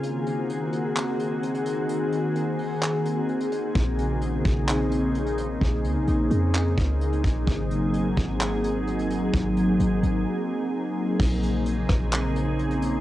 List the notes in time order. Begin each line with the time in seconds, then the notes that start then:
Already playing: G#4
0.03 D#3 A#3 C4 F#4, closed hi-hat
0.27 closed hi-hat
0.50 closed hi-hat
0.73 closed hi-hat
0.97 clap, closed hi-hat
1.20 closed hi-hat
1.43 closed hi-hat
1.55 closed hi-hat
1.66 closed hi-hat
1.89 closed hi-hat
2.13 closed hi-hat
2.36 closed hi-hat
2.59 open hi-hat
2.83 clap, closed hi-hat
3.06 closed hi-hat
3.29 closed hi-hat
3.40 closed hi-hat
3.52 closed hi-hat
3.75 A#1 C#3 D#4, kick, closed hi-hat
3.99 closed hi-hat
4.22 closed hi-hat
4.45 A#1, kick, closed hi-hat
4.69 clap, closed hi-hat
4.92 closed hi-hat
5.15 closed hi-hat
5.27 closed hi-hat
5.38 closed hi-hat
5.61 A#1, kick, closed hi-hat
5.85 C#2, closed hi-hat
5.96 A#1
6.08 A#1, closed hi-hat
6.31 F2, closed hi-hat
6.55 clap, closed hi-hat
6.78 C#2, kick, closed hi-hat
7.01 closed hi-hat
7.13 closed hi-hat
7.24 A#1, kick, closed hi-hat
7.47 G#1 F#3 G#4, kick, closed hi-hat
7.71 closed hi-hat
7.94 closed hi-hat
8.17 G#1, kick, closed hi-hat
8.41 clap, closed hi-hat
8.64 closed hi-hat
8.87 closed hi-hat
8.99 closed hi-hat
9.10 closed hi-hat
9.33 G#1, kick, closed hi-hat
9.57 closed hi-hat
9.80 G#1, closed hi-hat
10.03 G#1, closed hi-hat
11.20 A#1 C#3 A#3 C4 D#4 G#4, kick, crash
11.43 closed hi-hat
11.66 closed hi-hat
11.89 A#1, kick, cross-stick, closed hi-hat
12.13 clap, closed hi-hat
12.36 closed hi-hat
12.59 closed hi-hat
12.71 closed hi-hat
12.82 closed hi-hat